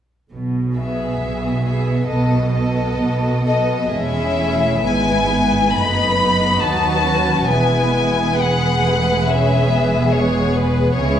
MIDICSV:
0, 0, Header, 1, 6, 480
1, 0, Start_track
1, 0, Key_signature, 4, "major"
1, 0, Tempo, 887574
1, 170, Time_signature, 4, 2, 24, 8
1, 1607, Tempo, 969305
1, 2087, Tempo, 895522
1, 3527, Tempo, 867052
1, 6056, End_track
2, 0, Start_track
2, 0, Title_t, "Violin section"
2, 0, Program_c, 0, 48
2, 415, Note_on_c, 0, 76, 27
2, 879, Note_off_c, 0, 76, 0
2, 897, Note_on_c, 0, 76, 25
2, 1122, Note_on_c, 0, 75, 29
2, 1124, Note_off_c, 0, 76, 0
2, 1357, Note_off_c, 0, 75, 0
2, 1363, Note_on_c, 0, 75, 34
2, 1841, Note_off_c, 0, 75, 0
2, 1854, Note_on_c, 0, 75, 48
2, 1856, Note_off_c, 0, 75, 0
2, 1856, Note_on_c, 0, 75, 35
2, 2084, Note_on_c, 0, 76, 46
2, 2087, Note_off_c, 0, 75, 0
2, 2572, Note_off_c, 0, 76, 0
2, 2572, Note_on_c, 0, 80, 48
2, 3046, Note_on_c, 0, 83, 50
2, 3048, Note_off_c, 0, 80, 0
2, 3527, Note_off_c, 0, 83, 0
2, 3532, Note_on_c, 0, 81, 49
2, 4015, Note_off_c, 0, 81, 0
2, 4019, Note_on_c, 0, 80, 44
2, 4491, Note_off_c, 0, 80, 0
2, 4502, Note_on_c, 0, 78, 47
2, 4976, Note_on_c, 0, 76, 43
2, 4980, Note_off_c, 0, 78, 0
2, 5454, Note_off_c, 0, 76, 0
2, 5464, Note_on_c, 0, 73, 42
2, 5691, Note_on_c, 0, 71, 46
2, 5697, Note_off_c, 0, 73, 0
2, 5929, Note_off_c, 0, 71, 0
2, 5931, Note_on_c, 0, 73, 44
2, 6056, Note_off_c, 0, 73, 0
2, 6056, End_track
3, 0, Start_track
3, 0, Title_t, "Violin section"
3, 0, Program_c, 1, 48
3, 408, Note_on_c, 1, 68, 24
3, 875, Note_off_c, 1, 68, 0
3, 881, Note_on_c, 1, 68, 27
3, 1115, Note_off_c, 1, 68, 0
3, 1122, Note_on_c, 1, 69, 32
3, 1356, Note_off_c, 1, 69, 0
3, 1365, Note_on_c, 1, 69, 37
3, 1842, Note_off_c, 1, 69, 0
3, 1849, Note_on_c, 1, 69, 32
3, 2082, Note_on_c, 1, 64, 34
3, 2082, Note_on_c, 1, 68, 33
3, 2084, Note_off_c, 1, 69, 0
3, 2549, Note_off_c, 1, 64, 0
3, 2550, Note_off_c, 1, 68, 0
3, 2572, Note_on_c, 1, 64, 32
3, 2572, Note_on_c, 1, 71, 31
3, 3038, Note_off_c, 1, 64, 0
3, 3038, Note_off_c, 1, 71, 0
3, 3050, Note_on_c, 1, 63, 36
3, 3050, Note_on_c, 1, 71, 33
3, 3275, Note_off_c, 1, 63, 0
3, 3281, Note_on_c, 1, 63, 35
3, 3519, Note_off_c, 1, 71, 0
3, 3520, Note_off_c, 1, 63, 0
3, 3530, Note_on_c, 1, 71, 34
3, 3531, Note_on_c, 1, 66, 31
3, 4004, Note_off_c, 1, 71, 0
3, 4014, Note_off_c, 1, 66, 0
3, 4014, Note_on_c, 1, 64, 32
3, 4016, Note_on_c, 1, 71, 34
3, 4488, Note_off_c, 1, 64, 0
3, 4493, Note_on_c, 1, 68, 34
3, 4970, Note_off_c, 1, 68, 0
3, 4977, Note_on_c, 1, 68, 35
3, 5434, Note_off_c, 1, 71, 0
3, 5443, Note_off_c, 1, 68, 0
3, 5450, Note_on_c, 1, 68, 32
3, 5925, Note_off_c, 1, 68, 0
3, 5932, Note_on_c, 1, 68, 36
3, 5935, Note_on_c, 1, 64, 39
3, 6056, Note_off_c, 1, 64, 0
3, 6056, Note_off_c, 1, 68, 0
3, 6056, End_track
4, 0, Start_track
4, 0, Title_t, "Viola section"
4, 0, Program_c, 2, 48
4, 417, Note_on_c, 2, 59, 23
4, 879, Note_off_c, 2, 59, 0
4, 889, Note_on_c, 2, 59, 27
4, 1120, Note_off_c, 2, 59, 0
4, 1127, Note_on_c, 2, 59, 28
4, 1357, Note_off_c, 2, 59, 0
4, 1364, Note_on_c, 2, 59, 35
4, 1841, Note_off_c, 2, 59, 0
4, 1856, Note_on_c, 2, 59, 34
4, 2087, Note_off_c, 2, 59, 0
4, 2092, Note_on_c, 2, 56, 29
4, 2093, Note_on_c, 2, 61, 31
4, 2318, Note_off_c, 2, 56, 0
4, 2338, Note_on_c, 2, 57, 32
4, 2555, Note_off_c, 2, 61, 0
4, 2576, Note_on_c, 2, 56, 32
4, 2577, Note_off_c, 2, 57, 0
4, 2579, Note_on_c, 2, 59, 29
4, 2808, Note_off_c, 2, 59, 0
4, 2813, Note_off_c, 2, 56, 0
4, 2815, Note_on_c, 2, 59, 32
4, 3042, Note_off_c, 2, 59, 0
4, 3048, Note_on_c, 2, 57, 28
4, 3049, Note_on_c, 2, 59, 28
4, 3518, Note_off_c, 2, 57, 0
4, 3518, Note_off_c, 2, 59, 0
4, 3518, Note_on_c, 2, 63, 33
4, 3520, Note_on_c, 2, 54, 32
4, 3766, Note_off_c, 2, 63, 0
4, 3767, Note_on_c, 2, 61, 35
4, 4006, Note_off_c, 2, 61, 0
4, 4009, Note_off_c, 2, 54, 0
4, 4009, Note_on_c, 2, 59, 34
4, 4014, Note_on_c, 2, 56, 32
4, 4486, Note_off_c, 2, 56, 0
4, 4487, Note_off_c, 2, 59, 0
4, 4492, Note_on_c, 2, 56, 29
4, 4493, Note_on_c, 2, 59, 32
4, 4732, Note_on_c, 2, 57, 35
4, 4736, Note_off_c, 2, 59, 0
4, 4969, Note_off_c, 2, 56, 0
4, 4975, Note_off_c, 2, 57, 0
4, 4975, Note_on_c, 2, 56, 31
4, 4977, Note_on_c, 2, 61, 33
4, 5215, Note_on_c, 2, 59, 32
4, 5216, Note_off_c, 2, 61, 0
4, 5445, Note_off_c, 2, 59, 0
4, 5452, Note_on_c, 2, 59, 35
4, 5918, Note_off_c, 2, 59, 0
4, 5924, Note_off_c, 2, 56, 0
4, 5927, Note_on_c, 2, 61, 36
4, 5930, Note_on_c, 2, 56, 36
4, 6056, Note_off_c, 2, 56, 0
4, 6056, Note_off_c, 2, 61, 0
4, 6056, End_track
5, 0, Start_track
5, 0, Title_t, "Cello section"
5, 0, Program_c, 3, 48
5, 172, Note_on_c, 3, 47, 31
5, 593, Note_off_c, 3, 47, 0
5, 652, Note_on_c, 3, 47, 29
5, 1069, Note_off_c, 3, 47, 0
5, 1126, Note_on_c, 3, 47, 41
5, 1551, Note_off_c, 3, 47, 0
5, 1607, Note_on_c, 3, 47, 42
5, 2034, Note_off_c, 3, 47, 0
5, 2089, Note_on_c, 3, 40, 34
5, 2553, Note_off_c, 3, 40, 0
5, 2576, Note_on_c, 3, 44, 32
5, 3046, Note_on_c, 3, 42, 32
5, 3050, Note_off_c, 3, 44, 0
5, 3525, Note_on_c, 3, 39, 33
5, 3527, Note_off_c, 3, 42, 0
5, 4002, Note_off_c, 3, 39, 0
5, 4009, Note_on_c, 3, 40, 33
5, 5905, Note_off_c, 3, 40, 0
5, 5932, Note_on_c, 3, 49, 38
5, 6056, Note_off_c, 3, 49, 0
5, 6056, End_track
6, 0, Start_track
6, 0, Title_t, "Double bass section"
6, 0, Program_c, 4, 48
6, 174, Note_on_c, 4, 35, 31
6, 595, Note_off_c, 4, 35, 0
6, 648, Note_on_c, 4, 35, 34
6, 1067, Note_off_c, 4, 35, 0
6, 1124, Note_on_c, 4, 35, 41
6, 1550, Note_off_c, 4, 35, 0
6, 1612, Note_on_c, 4, 35, 42
6, 2036, Note_off_c, 4, 35, 0
6, 2088, Note_on_c, 4, 28, 33
6, 2553, Note_off_c, 4, 28, 0
6, 2573, Note_on_c, 4, 32, 35
6, 3046, Note_on_c, 4, 30, 34
6, 3048, Note_off_c, 4, 32, 0
6, 3524, Note_on_c, 4, 39, 29
6, 3526, Note_off_c, 4, 30, 0
6, 4001, Note_off_c, 4, 39, 0
6, 4012, Note_on_c, 4, 28, 35
6, 5907, Note_off_c, 4, 28, 0
6, 5926, Note_on_c, 4, 37, 36
6, 6056, Note_off_c, 4, 37, 0
6, 6056, End_track
0, 0, End_of_file